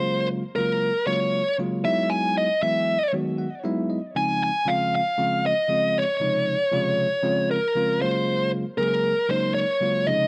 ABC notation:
X:1
M:4/4
L:1/8
Q:"Swing 16ths" 1/4=117
K:Gblyd
V:1 name="Lead electric guitar"
c z B2 d2 z =e | ^g ^d =e2 z4 | a a f f2 e2 d- | d4- d B2 c- |
c z B2 c d2 e |]
V:2 name="Tine electric piano" clef=bass
[D,G,A,B,F] z [D,G,A,B,F] z [D,G,A,B,F] z [D,G,A,B,F] [^F,^G,=B,^D=E]- | [^F,^G,=B,^D=E] z [=E,F,G,B,E] z [^D,F,G,B,^F] ^f [F,G,B,DE=e] ^d | [D,F,A,CE] z [D,F,A,CF] z [D,F,A,CF] z [D,F,A,CF] z | [C,D,F,A,E] z [C,D,F,A,F] z [D,F,A,CF] z [D,F,A,CF] [D,G,A,B,F]- |
[D,G,A,B,F] z [D,G,A,B,A] z [D,G,A,B,E] z [D,G,A,B,F] [C,D,F,A,E] |]